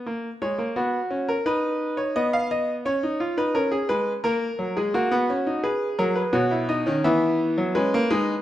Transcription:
<<
  \new Staff \with { instrumentName = "Grand piano" } { \time 4/4 \key b \major \tempo 4 = 86 << { r8 cis''8 fis'8. ais'16 b'8. cis''16 dis''16 eis''16 dis''8 | cis''8. b'16 ais'16 gis'16 b'8 ais'8. gis'16 fis'4 | b'8 ais'16 b'16 cis''8 dis''8 e''4 b'4 | } \\ { ais8 gis16 ais16 b8 cis'8 dis'4 b4 | cis'16 dis'16 eis'16 dis'16 cis'8 gis8 ais8 fis16 gis16 ais16 b16 cis'16 dis'16 | gis'4 fis'16 e'16 dis'16 cis'16 b4 cis'8 dis'8 | } >> }
  \new Staff \with { instrumentName = "Grand piano" } { \clef bass \time 4/4 \key b \major r1 | r1 | r8 fis8 b,8. dis16 e8. fis16 gis16 ais16 gis8 | }
>>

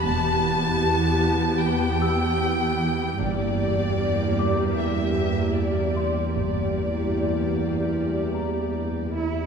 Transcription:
<<
  \new Staff \with { instrumentName = "Celesta" } { \time 4/4 \key g \mixolydian \tempo 4 = 76 r2 r8 e'''4.~ | e'''4. <d'' d'''>2 c'''8~ | c'''2~ c'''8 bes''4. | }
  \new Staff \with { instrumentName = "Violin section" } { \time 4/4 \key g \mixolydian a''2 g''2 | d''2 e''4 d''4 | d''2.~ d''8 r8 | }
  \new Staff \with { instrumentName = "Viola section" } { \time 4/4 \key g \mixolydian <b g'>1 | <bes g'>1 | <bes g'>2.~ <bes g'>8 e'8 | }
  \new Staff \with { instrumentName = "Cello section" } { \clef bass \time 4/4 \key g \mixolydian e,1 | g,1 | g,2.~ g,8 e'8 | }
  \new Staff \with { instrumentName = "Synth drone" } { \clef bass \time 4/4 \key g \mixolydian e,1 | e,1 | e,1 | }
  \new Staff \with { instrumentName = "Double bass section" } { \clef bass \time 4/4 \key g \mixolydian e,,4 r2. | g,,4 r2. | g,,4 r2. | }
>>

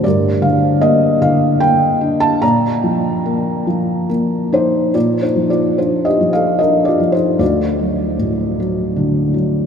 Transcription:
<<
  \new Staff \with { instrumentName = "Felt piano" } { \time 3/4 \key bes \major \tempo 4 = 75 << { d''8 f''8 ees''8 f''8 g''8. a''16 | bes''2 r8 c''8 | \tuplet 3/2 { d''8 c''8 d''8 c''8 ees''8 f''8 ees''8 d''8 c''8 } | d''4 r2 | } \\ { bes'4. r4. | d''2 r8 ees'8 | \tuplet 3/2 { f'8 ees'8 f'8 f'8 g'8 a'8 bes'8 f'8 ees'8 } | fis'4 r2 | } >> }
  \new Staff \with { instrumentName = "Felt piano" } { \clef bass \time 3/4 \key bes \major g,8 d8 bes8 d8 bes8 d'8 | bes,8 f8 bes8 f8 bes8 d''8 | bes,8 f8 d'8 f8 d'8 f8 | d,8 fis8 a,8 fis8 d8 fis8 | }
>>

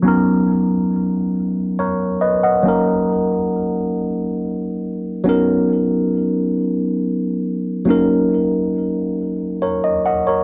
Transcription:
\new Staff \with { instrumentName = "Tine electric piano" } { \time 6/8 \key b \major \tempo 4. = 46 << { r2 <ais' cis''>8 <b' dis''>16 <dis'' fis''>16~ | <dis'' fis''>16 r2 r8. | r2. | r2 <ais' cis''>16 dis''16 <dis'' fis''>16 <ais' cis''>16 | } \\ { <fis b cis' dis' ais'>2. | <fis ais cis' dis' ais'>2. | <fis b cis' dis' ais'>2. | <fis ais cis' dis' ais'>2. | } >> }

